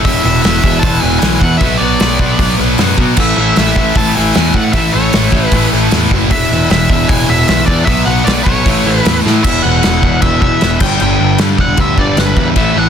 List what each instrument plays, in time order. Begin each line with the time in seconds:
0.05 picked electric bass E1, overdriven electric guitar E2 B2 E3, lead electric guitar E5, kick, open hi-hat
0.24 picked electric bass E1, overdriven electric guitar E2 B2 E3, lead electric guitar E5
0.42 picked electric bass E1, overdriven electric guitar E2 B2 E3, lead electric guitar E5, snare, open hi-hat
0.63 picked electric bass E1, overdriven electric guitar E2 B2 E3, kick
0.79 picked electric bass E1, lead electric guitar A5, kick, open hi-hat
0.83 overdriven electric guitar E2 B2 E3
1.00 picked electric bass E1, overdriven electric guitar E2 B2 E3, lead electric guitar G#5
1.19 picked electric bass B1, overdriven electric guitar E2 B2 E3, lead electric guitar G#5, snare, open hi-hat
1.39 picked electric bass E2, overdriven electric guitar E2 B2, lead electric guitar F#5, kick
1.43 overdriven electric guitar E3
1.57 picked electric bass B1, overdriven electric guitar B2, lead electric guitar E5, kick, open hi-hat
1.62 overdriven electric guitar F#3 B3
1.78 picked electric bass B1, overdriven electric guitar B2 F#3, lead electric guitar D5
1.82 overdriven electric guitar B3
2.00 picked electric bass B1, overdriven electric guitar B2 F#3 B3, snare, open hi-hat
2.19 picked electric bass B1, overdriven electric guitar B2 F#3 B3, kick
2.38 picked electric bass B1, overdriven electric guitar B2 F#3 B3, kick, open hi-hat
2.59 picked electric bass B1, overdriven electric guitar B2 F#3 B3
2.78 picked electric bass F#2, overdriven electric guitar B2 F#3 B3, snare, open hi-hat
2.97 picked electric bass B2, overdriven electric guitar B2 F#3 B3, kick
3.17 picked electric bass A1, overdriven electric guitar A2 E3 A3, lead electric guitar E5, kick, crash
3.36 picked electric bass A1, overdriven electric guitar A2 E3 A3, lead electric guitar E5
3.56 picked electric bass A1, overdriven electric guitar A2 E3 A3, lead electric guitar E5, snare, open hi-hat
3.76 picked electric bass A1, overdriven electric guitar A2 E3 A3, kick
3.95 picked electric bass A1, overdriven electric guitar A2 E3 A3, lead electric guitar A5, kick, open hi-hat
4.15 picked electric bass A1, overdriven electric guitar A2 E3 A3, lead electric guitar G#5
4.34 picked electric bass E2, overdriven electric guitar A2 E3 A3, snare, open hi-hat
4.54 picked electric bass A2, overdriven electric guitar A2 E3 A3, lead electric guitar F#5, kick
4.73 picked electric bass A1, overdriven electric guitar A2 E3 A3, lead electric guitar E5, kick, open hi-hat
4.93 picked electric bass A1, overdriven electric guitar A2 E3 A3, lead electric guitar C#5
5.12 picked electric bass A1, overdriven electric guitar A2 E3 A3, snare, open hi-hat
5.32 picked electric bass A1, overdriven electric guitar A2 E3 A3, kick
5.48 lead electric guitar B4, open hi-hat
5.52 picked electric bass A1, overdriven electric guitar A2 E3 A3, kick
5.73 picked electric bass A1, overdriven electric guitar A2 E3 A3
5.91 picked electric bass E2, overdriven electric guitar A2 E3 A3, snare, open hi-hat
6.11 picked electric bass F#1, overdriven electric guitar A2 E3 A3, kick
6.31 picked electric bass E1, overdriven electric guitar E2 B2 E3, lead electric guitar E5, kick, open hi-hat
6.51 picked electric bass E1, overdriven electric guitar E2 B2 E3
6.70 picked electric bass E1, overdriven electric guitar E2 B2 E3, lead electric guitar E5, snare, open hi-hat
6.90 picked electric bass E1, overdriven electric guitar E2 B2 E3, kick
7.08 picked electric bass E1, overdriven electric guitar E2 B2 E3, lead electric guitar G#5, kick, open hi-hat
7.28 picked electric bass E1, overdriven electric guitar E2 B2 E3, lead electric guitar E5
7.48 picked electric bass B1, overdriven electric guitar E2 B2 E3, lead electric guitar E5, snare, open hi-hat
7.66 picked electric bass E2, overdriven electric guitar E2 B2 E3, lead electric guitar D5, kick
7.85 picked electric bass B1, overdriven electric guitar B2 F#3 B3, lead electric guitar E5, kick, open hi-hat
8.05 picked electric bass B1, overdriven electric guitar B2 F#3 B3, lead electric guitar F#5
8.25 picked electric bass B1, overdriven electric guitar B2 F#3 B3, lead electric guitar D5, snare, open hi-hat
8.44 picked electric bass B1, overdriven electric guitar B2 F#3 B3, lead electric guitar C#5, kick
8.66 picked electric bass A1, overdriven electric guitar A2 E3 A3, kick, open hi-hat
8.86 picked electric bass A1, overdriven electric guitar A2 E3 A3
8.99 lead electric guitar B4
9.05 picked electric bass E2, overdriven electric guitar A2 E3 A3, snare, open hi-hat
9.25 overdriven electric guitar A2 E3 A3, picked electric bass A2, snare
9.44 picked electric bass E1, overdriven electric guitar E2 B2 E3, lead electric guitar E5, kick, crash
9.63 picked electric bass E1, overdriven electric guitar E2 B2 E3, lead electric guitar F#5
9.83 picked electric bass E1, overdriven electric guitar E2 B2 E3, snare, crash
10.03 picked electric bass E1, overdriven electric guitar E2 B2 E3, kick
10.22 picked electric bass E1, overdriven electric guitar E2 B2 E3, lead electric guitar E5, kick, crash
10.41 overdriven electric guitar E2 B2 E3, lead electric guitar E5, kick
10.61 picked electric bass E1, overdriven electric guitar E2 B2 E3, snare, crash
10.80 picked electric bass G1, overdriven electric guitar G2 D3 G3, lead electric guitar G5, kick, crash
11.00 picked electric bass G1, overdriven electric guitar G2 D3 G3, lead electric guitar G5, crash
11.20 picked electric bass G1, overdriven electric guitar G2 D3 G3
11.38 overdriven electric guitar G2 D3 G3, picked electric bass G2, snare, crash
11.57 picked electric bass E1, overdriven electric guitar G2 D3 G3, lead electric guitar F#5, kick
11.76 picked electric bass D2, overdriven electric guitar G2 D3 G3, kick, crash
11.81 lead electric guitar E5
11.97 picked electric bass G1, overdriven electric guitar G2 D3 G3, lead electric guitar D5, kick
12.16 picked electric bass G1, overdriven electric guitar G2 D3 G3, lead electric guitar B4, snare, crash
12.36 picked electric bass E2, overdriven electric guitar G2 D3 G3, kick
12.56 picked electric bass A1, overdriven electric guitar A2 E3 A3, lead electric guitar E5, kick, crash
12.76 picked electric bass A1, overdriven electric guitar A2 E3 A3, lead electric guitar F#5